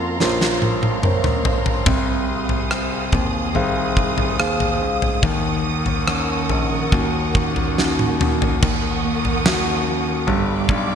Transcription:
Already playing: F2 A#3 F4 A#4 F5 A#5 C6
0.20 A#1 F4 A#4 C5 C#5, snare
0.41 snare
0.62 high tom
0.83 high tom
1.03 A#4 C5 C#5, mid tom
1.24 mid tom
1.45 floor tom
1.66 floor tom
1.85 C2 C3 C4 G#4 D#6, kick, floor tom
2.49 floor tom
2.71 C4, cross-stick
3.12 D#2, kick, floor tom
3.55 C2 D#3 G#4 C5 F5, floor tom
3.97 kick
4.18 floor tom
4.39 D#2 G#4 C5 F5, cross-stick
4.60 floor tom
4.81 C#2
5.02 floor tom
5.23 D#2 D#3 A#4 F#5 C#6, kick, floor tom
5.86 floor tom
6.08 C#4, cross-stick
6.49 A#1, floor tom
6.92 D#2 A#3 C#4 D#4 F#4, kick, floor tom
7.35 kick
7.56 floor tom
7.78 C#4 D#4 F#4, snare
7.99 high tom
8.21 mid tom
8.42 floor tom
8.63 D#2 D#3 A#4 F#5 C#6 D#6, kick, floor tom, crash
9.05 A#3
9.25 floor tom
9.46 A#3 C#4 F#4, snare
9.87 A#3
10.27 G1 G2 G3 G4 F5 B5 D6, floor tom
10.69 B1 D4, kick

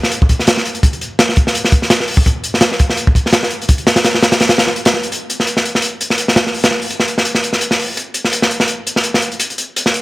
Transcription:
0.03 snare
0.12 closed hi-hat
0.22 kick
0.29 kick, closed hi-hat
0.39 snare
0.47 snare, closed hi-hat
0.57 snare
0.65 closed hi-hat
0.75 closed hi-hat
0.83 kick, closed hi-hat
0.93 closed hi-hat
1.01 closed hi-hat
1.19 snare, closed hi-hat
1.29 snare
1.36 kick, closed hi-hat
1.47 snare
1.55 closed hi-hat
1.65 snare
1.72 kick, closed hi-hat
1.82 snare
1.90 snare, closed hi-hat
2.00 snare
2.08 open hi-hat
2.17 kick
2.26 kick, closed hi-hat
2.44 closed hi-hat
2.54 snare
2.61 snare, closed hi-hat
2.72 snare
2.79 kick, closed hi-hat
2.90 snare
2.97 closed hi-hat
3.07 kick
3.15 kick, closed hi-hat
3.26 snare
3.33 snare, closed hi-hat
3.43 snare
3.50 closed hi-hat
3.62 closed hi-hat
3.69 kick, closed hi-hat
3.78 closed hi-hat
3.87 snare, closed hi-hat
3.96 snare, closed hi-hat
4.05 snare, closed hi-hat
4.14 snare
4.23 snare, closed hi-hat
4.32 snare, closed hi-hat
4.40 snare, closed hi-hat
4.49 snare, closed hi-hat
4.58 snare, closed hi-hat
4.67 snare
4.76 closed hi-hat
4.85 snare, closed hi-hat
4.94 snare
5.03 closed hi-hat
5.12 closed hi-hat
5.30 closed hi-hat
5.40 snare
5.47 closed hi-hat
5.57 snare
5.65 closed hi-hat
5.75 snare
5.82 closed hi-hat
6.01 closed hi-hat
6.10 snare
6.18 closed hi-hat
6.28 snare
6.36 snare, closed hi-hat
6.47 snare
6.54 open hi-hat
6.64 snare, closed hi-hat
6.71 snare
6.82 open hi-hat
6.90 closed hi-hat
7.00 snare
7.08 closed hi-hat
7.18 snare
7.25 closed hi-hat
7.35 snare
7.44 closed hi-hat
7.53 snare
7.61 closed hi-hat
7.71 snare
7.79 open hi-hat
7.97 closed hi-hat
8.14 closed hi-hat
8.25 snare
8.33 closed hi-hat
8.42 snare
8.51 closed hi-hat
8.60 snare
8.68 closed hi-hat
8.87 closed hi-hat
8.96 snare
9.04 closed hi-hat
9.14 snare
9.22 closed hi-hat
9.32 closed hi-hat
9.40 closed hi-hat
9.50 closed hi-hat
9.58 closed hi-hat
9.76 closed hi-hat
9.86 snare
9.94 closed hi-hat

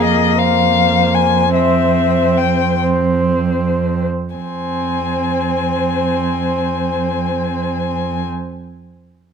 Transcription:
Already playing: F2 A#3 G#4
0.04 D#5
0.39 C5 F5
1.14 G#5
1.54 C4 E5
2.38 G5
2.82 C4 C5
4.35 F2 C4 C5 G#5

